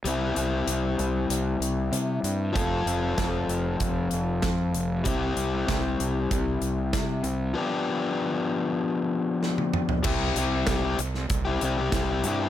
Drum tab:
CC |----------------|----------------|----------------|----------------|
HH |x-x-x-x-x-x-x-x-|x-x-x-x-x-x-x-x-|x-x-x-x-x-x-x-x-|----------------|
SD |----------------|----o-------o---|----o-------o---|------------o---|
T1 |----------------|----------------|----------------|-------------o--|
T2 |----------------|----------------|----------------|--------------o-|
FT |----------------|----------------|----------------|---------------o|
BD |----------------|o---o---o---o---|o---o---o---o---|----------------|

CC |x---------------|
HH |--x-x-x-x-x-x-x-|
SD |----o--o----o---|
T1 |----------------|
T2 |----------------|
FT |----------------|
BD |o---o---o---o---|